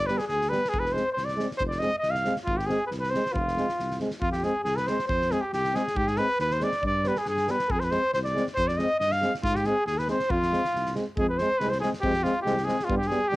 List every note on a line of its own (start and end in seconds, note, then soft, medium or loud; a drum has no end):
0.00 0.11 G1 medium
0.00 0.11 D5 medium
0.06 0.18 G3 medium
0.06 0.18 B3 medium
0.06 0.20 B4 medium
0.06 0.22 B4 medium
0.06 snare soft
0.18 0.26 G#4 medium
0.18 0.31 G#4 medium
0.18 snare soft
0.27 0.54 D2 medium
0.27 0.51 G#4 medium
0.27 snare soft
0.32 0.53 G#4 medium
0.42 snare soft
0.49 0.60 G3 medium
0.49 0.71 B4 medium
0.49 0.79 B4 medium
0.49 snare soft
0.53 0.62 B3 soft
0.65 snare soft
0.69 0.81 G#4 medium
0.74 0.98 F1 medium
0.74 0.88 G#4 medium
0.74 kick medium
0.79 0.94 B4 medium
0.86 0.95 B4 medium
0.86 snare soft
0.93 1.02 G#3 soft
0.93 1.04 C4 medium
0.93 1.12 C5 medium
0.93 1.15 C5 medium
0.97 snare soft
1.12 1.26 C5 medium
1.12 1.28 C5 medium
1.17 1.41 C2 medium
1.17 snare soft
1.25 1.48 D5 medium
1.25 1.49 D5 medium
1.25 snare soft
1.37 1.46 G#3 medium
1.37 1.48 C4 medium
1.37 snare soft
1.51 snare soft
1.57 1.84 F1 medium
1.57 1.63 C5 loud
1.57 1.65 C5 medium
1.57 kick medium
1.69 1.80 D5 medium
1.69 1.84 D5 medium
1.69 snare soft
1.79 1.90 G#3 medium
1.79 1.90 C4 medium
1.79 1.98 D#5 loud
1.79 2.04 D#5 medium
1.79 snare soft
1.99 2.12 D#5 medium
2.03 2.28 C2 medium
2.03 2.18 D#5 medium
2.03 snare soft
2.11 2.35 F5 medium
2.15 2.38 F5 medium
2.15 snare soft
2.25 2.34 G#3 medium
2.25 2.34 C4 medium
2.25 snare soft
2.36 snare soft
2.45 2.71 G#1 medium
2.45 2.59 F4 medium
2.45 kick medium
2.49 2.62 F4 medium
2.57 2.68 G4 medium
2.57 2.73 G4 medium
2.57 snare soft
2.66 2.78 G#3 medium
2.66 2.78 C4 medium
2.66 2.86 G#4 medium
2.66 snare soft
2.72 2.90 G#4 medium
2.87 2.89 B4 medium
2.91 3.15 C2 medium
2.91 2.94 B4 medium
2.91 snare soft
3.00 3.12 B4 medium
3.00 snare soft
3.04 3.15 B4 medium
3.10 3.22 C4 medium
3.10 3.34 C5 medium
3.10 3.39 C5 medium
3.15 3.23 G#3 medium
3.15 snare soft
3.26 snare soft
3.33 3.58 F1 loud
3.33 3.99 F4 medium
3.33 kick medium
3.38 4.01 F4 medium
3.48 snare soft
3.57 3.66 G#3 medium
3.57 3.66 C4 medium
3.57 snare soft
3.69 snare soft
3.78 4.02 C2 medium
3.78 snare soft
3.91 snare soft
4.00 4.09 G#3 medium
4.00 4.09 C4 soft
4.00 snare soft
4.11 snare soft
4.21 4.45 F2 medium
4.21 4.31 F4 medium
4.21 4.33 F4 medium
4.21 kick medium
4.32 4.46 G4 medium
4.32 snare soft
4.38 4.47 G4 soft
4.43 4.52 G#3 soft
4.43 4.52 C4 medium
4.43 4.64 G#4 medium
4.43 4.66 G#4 medium
4.43 snare soft
4.64 4.89 C2 medium
4.64 4.78 G#4 medium
4.64 4.81 G#4 medium
4.64 snare soft
4.76 4.89 B4 medium
4.76 4.91 B4 medium
4.76 snare soft
4.87 4.97 G#3 medium
4.87 4.96 C4 medium
4.87 5.07 C5 medium
4.87 5.10 C5 medium
4.87 snare soft
4.99 snare soft
5.08 5.33 F2 medium
5.08 5.33 C5 medium
5.08 kick medium
5.22 snare soft
5.31 5.40 G#3 medium
5.31 5.39 C4 medium
5.31 5.46 G#4 medium
5.31 5.43 G#4 medium
5.31 snare soft
5.41 5.52 G4 medium
5.41 5.54 G4 medium
5.53 5.76 C2 medium
5.53 5.77 G4 medium
5.53 snare soft
5.57 5.78 G4 medium
5.64 snare soft
5.74 5.83 G#3 medium
5.74 5.83 C4 medium
5.74 5.98 G#4 medium
5.74 6.00 G#4 medium
5.74 snare soft
5.88 snare soft
5.96 6.19 G#2 loud
5.96 6.09 G4 medium
5.96 6.11 G4 medium
5.96 kick medium
6.07 6.19 G#4 medium
6.07 6.22 G#4 medium
6.07 snare soft
6.16 6.26 G#3 medium
6.16 6.27 C4 medium
6.16 6.39 B4 medium
6.16 snare soft
6.20 6.41 B4 medium
6.39 6.63 D#2 medium
6.39 6.54 B4 medium
6.39 6.55 B4 medium
6.39 snare soft
6.51 6.65 C5 medium
6.51 6.64 C5 medium
6.51 snare soft
6.60 6.69 G#3 medium
6.60 6.70 C4 medium
6.60 6.83 D5 medium
6.60 6.84 D5 medium
6.60 snare soft
6.72 snare soft
6.83 7.07 G2 medium
6.83 7.06 D5 medium
6.83 7.09 D5 medium
6.83 kick medium
7.04 7.15 G3 soft
7.04 7.14 B3 medium
7.04 7.15 B4 medium
7.04 7.19 B4 medium
7.04 snare soft
7.14 7.24 G#4 medium
7.14 snare soft
7.18 7.27 G#4 medium
7.24 7.50 G2 medium
7.24 7.49 G#4 medium
7.24 snare soft
7.29 7.52 G#4 medium
7.37 snare soft
7.48 7.56 G3 medium
7.48 7.58 B3 medium
7.48 7.70 B4 medium
7.48 7.73 B4 medium
7.48 snare soft
7.59 snare soft
7.68 7.94 F2 medium
7.68 7.80 G#4 medium
7.68 7.81 G#4 medium
7.68 kick medium
7.78 7.85 C5 soft
7.78 7.86 C5 medium
7.78 snare soft
7.83 7.94 B4 medium
7.83 7.93 B4 medium
7.90 7.99 G#3 soft
7.90 8.02 C4 medium
7.90 8.13 C5 medium
7.90 8.14 C5 medium
7.90 snare soft
8.14 8.38 C2 medium
8.14 8.19 C5 medium
8.14 snare soft
8.24 8.45 D5 medium
8.24 8.46 D5 medium
8.24 snare soft
8.34 8.43 G#3 medium
8.34 8.45 C4 medium
8.34 snare soft
8.47 snare soft
8.55 8.81 F2 loud
8.55 8.69 C5 loud
8.55 8.70 C5 medium
8.55 kick medium
8.68 8.79 D5 medium
8.68 8.82 D5 medium
8.68 snare soft
8.77 8.87 G#3 medium
8.77 8.88 C4 medium
8.77 8.99 D#5 medium
8.77 9.01 D#5 medium
8.77 snare soft
9.00 9.24 G2 medium
9.00 9.13 D#5 medium
9.00 9.15 D#5 medium
9.00 snare soft
9.12 9.33 F5 medium
9.12 9.34 F5 medium
9.12 snare soft
9.22 9.31 G#3 medium
9.22 9.31 C4 medium
9.22 snare soft
9.35 snare soft
9.43 9.67 G#2 loud
9.43 9.55 F4 medium
9.43 9.58 F4 loud
9.43 kick medium
9.54 9.67 G4 medium
9.54 snare soft
9.65 9.74 G#3 medium
9.65 9.75 C4 medium
9.65 9.87 G#4 medium
9.65 9.86 G#4 medium
9.65 snare soft
9.86 10.11 D#2 medium
9.86 10.00 G#4 medium
9.86 snare soft
9.98 10.08 B4 medium
9.98 10.09 B4 medium
9.98 snare soft
10.08 10.17 G#3 medium
10.08 10.18 C4 medium
10.08 10.33 C5 medium
10.08 10.32 C5 medium
10.08 snare soft
10.20 snare soft
10.30 10.54 F2 loud
10.30 10.95 F4 loud
10.30 10.96 F4 medium
10.30 kick loud
10.43 snare soft
10.51 10.60 G#3 soft
10.51 10.62 C4 medium
10.51 snare soft
10.65 snare soft
10.73 10.97 C2 medium
10.73 snare soft
10.86 snare soft
10.95 11.04 G#3 medium
10.95 11.04 C4 soft
10.95 snare soft
11.17 11.41 F2 medium
11.17 11.26 G#3 medium
11.17 11.27 C4 medium
11.17 11.28 G#4 medium
11.17 kick loud
11.29 11.39 B4 medium
11.29 11.40 B4 medium
11.38 11.49 G#3 medium
11.38 11.48 C4 medium
11.38 11.60 C5 medium
11.38 11.62 C5 medium
11.38 snare soft
11.59 11.85 C2 medium
11.59 11.69 G#3 medium
11.59 11.69 C4 medium
11.59 11.71 B4 medium
11.59 11.73 B4 medium
11.59 snare soft
11.70 11.80 C5 medium
11.70 11.82 C5 medium
11.70 snare soft
11.80 11.91 G#3 medium
11.80 11.90 C4 medium
11.80 11.90 G#4 medium
11.80 11.92 G#4 medium
11.80 snare soft
11.93 snare soft
12.01 12.28 F2 medium
12.01 12.12 G#3 medium
12.01 12.12 C4 medium
12.01 12.25 G4 medium
12.01 12.26 G4 medium
12.01 kick medium
12.14 snare soft
12.23 12.33 G#3 medium
12.23 12.33 C4 medium
12.23 12.41 F4 medium
12.23 12.44 F4 medium
12.23 snare soft
12.42 12.54 G#3 medium
12.42 12.66 G4 medium
12.46 12.70 C2 medium
12.46 12.55 C4 medium
12.46 snare soft
12.58 snare soft
12.64 12.76 G#3 medium
12.64 12.77 C4 medium
12.64 12.90 G#4 medium
12.64 12.86 G#4 medium
12.68 snare soft
12.80 snare soft
12.85 12.97 B3 medium
12.85 12.97 F4 medium
12.85 12.98 F4 medium
12.89 13.14 G2 medium
12.89 12.98 G3 medium
12.89 kick medium
12.97 13.09 G4 medium
13.02 snare soft
13.07 13.19 G3 medium
13.07 13.20 B3 medium
13.07 13.30 G#4 medium
13.07 13.31 G#4 medium
13.07 snare soft
13.28 13.36 G3 medium
13.28 13.36 G4 medium
13.32 13.36 D2 loud
13.32 13.36 B3 medium